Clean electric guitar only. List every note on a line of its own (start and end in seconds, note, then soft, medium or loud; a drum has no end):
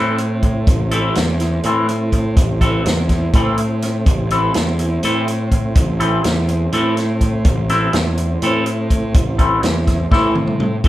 0.00 0.19 E3 medium
0.00 0.18 C4 medium
0.00 0.18 E4 medium
0.00 0.18 A4 medium
0.19 muted clean electric guitar stroke soft
0.44 muted clean electric guitar stroke soft
0.68 muted clean electric guitar stroke soft
0.91 1.16 E3 medium
0.91 1.16 C4 medium
0.91 1.16 E4 medium
0.91 1.16 A4 medium
1.17 muted clean electric guitar stroke soft
1.41 muted clean electric guitar stroke soft
1.65 1.88 E3 medium
1.65 1.88 C4 medium
1.65 1.88 E4 medium
1.65 1.88 A4 medium
1.89 muted clean electric guitar stroke soft
2.13 muted clean electric guitar stroke soft
2.37 muted clean electric guitar stroke soft
2.61 2.85 E3 medium
2.61 2.85 C4 medium
2.61 2.84 E4 medium
2.61 2.85 A4 medium
2.86 muted clean electric guitar stroke soft
3.10 muted clean electric guitar stroke soft
3.35 3.59 E3 medium
3.35 3.58 C4 medium
3.35 3.58 E4 medium
3.35 3.58 A4 medium
3.59 muted clean electric guitar stroke soft
3.83 muted clean electric guitar stroke soft
4.07 muted clean electric guitar stroke soft
4.32 4.54 E3 medium
4.32 4.54 C4 medium
4.32 4.54 E4 medium
4.32 4.55 A4 medium
4.55 muted clean electric guitar stroke soft
4.80 muted clean electric guitar stroke soft
5.04 5.27 E3 medium
5.04 5.27 C4 medium
5.04 5.27 E4 medium
5.04 5.26 A4 medium
5.28 muted clean electric guitar stroke soft
5.52 muted clean electric guitar stroke soft
5.77 muted clean electric guitar stroke soft
6.00 6.23 E3 medium
6.00 6.23 C4 medium
6.00 6.24 E4 medium
6.00 6.24 A4 medium
6.24 muted clean electric guitar stroke soft
6.48 muted clean electric guitar stroke soft
6.73 6.97 E3 medium
6.73 6.97 C4 medium
6.73 6.96 E4 medium
6.73 6.96 A4 medium
6.97 muted clean electric guitar stroke soft
7.22 muted clean electric guitar stroke soft
7.46 muted clean electric guitar stroke soft
7.70 7.93 E3 medium
7.70 7.93 C4 medium
7.70 7.94 E4 medium
7.70 7.94 A4 medium
7.94 muted clean electric guitar stroke soft
8.18 muted clean electric guitar stroke soft
8.43 8.66 E3 medium
8.43 8.66 C4 medium
8.43 8.66 E4 medium
8.43 8.66 A4 medium
8.67 muted clean electric guitar stroke soft
8.91 muted clean electric guitar stroke soft
9.15 muted clean electric guitar stroke soft
9.38 9.62 E3 medium
9.38 9.61 C4 medium
9.38 9.62 E4 medium
9.38 9.62 A4 medium
9.63 muted clean electric guitar stroke soft
9.88 muted clean electric guitar stroke soft
10.11 10.36 E3 medium
10.11 10.35 C4 medium
10.11 10.36 E4 medium
10.11 10.35 A4 medium
10.37 muted clean electric guitar stroke soft
10.61 muted clean electric guitar stroke soft
10.84 10.88 A2 medium
10.84 10.88 E3 medium
10.84 10.88 C4 medium